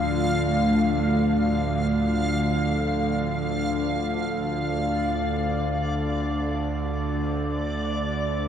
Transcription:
0.00 4.38 D2 medium
0.00 4.38 D3 medium
0.00 4.41 A3 medium
0.00 4.41 F4 medium
0.00 4.40 D5 medium
0.00 4.40 F5 medium
0.00 4.44 F5 medium
4.39 8.48 D2 medium
4.39 8.48 D3 medium
4.39 8.48 D5 medium

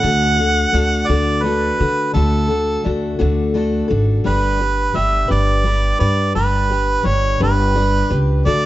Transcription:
0.00 0.64 D2 medium
0.00 0.38 D3 medium
0.00 0.38 A3 medium
0.00 0.39 D4 medium
0.00 0.37 F#4 medium
0.00 1.09 F#5 loud
0.04 0.35 A4 medium
0.36 0.72 D4 soft
0.36 0.73 F#4 soft
0.36 0.73 A4 soft
0.72 1.04 D2 medium
0.72 1.08 A3 medium
0.72 1.08 D4 medium
0.72 1.08 F#4 medium
0.72 1.08 A4 medium
1.07 1.69 D2 medium
1.07 1.45 D3 medium
1.07 1.42 A3 medium
1.07 1.43 D4 medium
1.07 1.44 F#4 medium
1.07 1.44 A4 medium
1.07 1.44 D5 medium
1.43 1.79 A3 medium
1.43 1.79 D4 medium
1.43 1.79 F#4 medium
1.43 1.77 A4 medium
1.43 2.13 B4 medium
1.79 2.10 D3 medium
1.79 2.13 D4 soft
1.79 2.13 F#4 soft
1.79 2.14 A4 soft
2.14 2.75 D2 medium
2.14 2.49 D3 medium
2.14 2.50 A3 medium
2.14 2.50 D4 medium
2.14 2.48 F#4 medium
2.14 2.89 A4 medium
2.14 2.47 A4 medium
2.48 2.83 D4 soft
2.48 2.84 F#4 soft
2.48 2.84 A4 soft
2.83 3.15 D2 medium
2.83 3.18 A3 medium
2.83 3.18 D4 medium
2.83 3.18 F#4 medium
2.83 3.17 A4 medium
3.19 3.81 D2 medium
3.19 3.55 D3 medium
3.19 3.53 A3 medium
3.19 3.54 D4 medium
3.19 3.54 F#4 medium
3.19 3.55 A4 medium
3.54 3.90 A3 medium
3.54 3.89 D4 medium
3.54 3.89 F#4 medium
3.54 3.87 A4 medium
3.88 4.21 G#1 medium
3.88 4.24 D4 soft
3.88 4.25 F#4 soft
3.88 4.24 A4 medium
4.24 4.86 G1 medium
4.24 4.60 G3 medium
4.24 4.61 D4 medium
4.24 4.60 G4 medium
4.24 4.98 B4 medium
4.24 4.58 B4 medium
4.60 4.93 D4 soft
4.60 4.94 G4 soft
4.60 4.95 B4 soft
4.93 5.26 G1 medium
4.93 5.29 G3 medium
4.93 5.29 D4 medium
4.93 5.28 G4 medium
4.93 5.27 B4 medium
4.93 5.31 E5 medium
5.28 5.91 G1 medium
5.28 5.62 G3 medium
5.28 5.64 D4 medium
5.28 5.64 G4 medium
5.28 5.65 B4 medium
5.28 5.97 D5 medium
5.63 6.00 G3 medium
5.63 6.00 D4 medium
5.63 5.99 G4 medium
5.63 5.98 B4 medium
5.99 6.31 G2 medium
5.99 6.35 D4 soft
5.99 6.35 G4 medium
5.99 6.35 B4 medium
5.99 6.33 D5 medium
6.35 6.95 G1 medium
6.35 6.71 G3 medium
6.35 6.71 D4 medium
6.35 6.70 G4 medium
6.35 7.08 B4 medium
6.35 6.68 B4 medium
6.70 7.03 D4 soft
6.70 7.04 G4 soft
6.70 7.05 B4 medium
7.03 7.36 G1 medium
7.03 7.40 G3 medium
7.03 7.40 D4 medium
7.03 7.40 G4 medium
7.03 7.39 B4 medium
7.03 7.42 C#5 medium
7.40 8.01 G1 medium
7.40 7.74 G3 soft
7.40 7.75 D4 medium
7.40 7.76 G4 medium
7.40 7.76 B4 medium
7.40 8.17 B4 medium
7.75 8.11 G3 medium
7.75 8.11 D4 medium
7.75 8.10 G4 medium
7.75 8.09 B4 medium
8.10 8.41 C#2 medium
8.10 8.45 D4 soft
8.10 8.46 G4 soft
8.10 8.46 B4 medium
8.45 8.66 D2 medium
8.45 8.66 D3 medium
8.45 8.66 A3 medium
8.45 8.66 D4 medium
8.45 8.66 F#4 medium
8.45 8.66 A4 medium
8.45 8.66 D5 medium

